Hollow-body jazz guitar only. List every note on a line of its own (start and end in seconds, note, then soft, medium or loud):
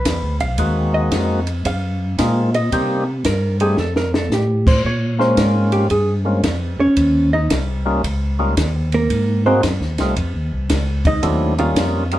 0.00 0.37 B4 medium
0.41 0.90 F5 loud
0.94 1.61 D#5 medium
1.67 2.50 F5 loud
2.55 3.04 D#5 loud
3.26 3.60 A#4 medium
3.61 3.78 G#4 medium
3.80 3.96 A4 medium
3.97 4.13 A#4 loud
4.15 4.32 A4 medium
4.33 4.67 G4 medium
4.67 4.84 C5 medium
4.86 5.20 C#5 medium
5.21 5.37 C5 medium
5.39 5.72 A#4 medium
5.73 5.90 G4 medium
5.91 6.12 G#4 medium
6.80 7.30 C#4 medium
6.80 7.29 C#5 medium
7.33 7.51 D#4 medium
7.33 7.50 D#5 loud
8.94 9.43 A#3 medium
8.94 9.43 A#4 loud
9.46 9.63 C4 medium
9.46 9.63 C5 loud
11.07 11.55 D#4 medium
11.07 11.55 D#5 medium
11.60 11.70 F4 medium
11.60 11.70 F5 loud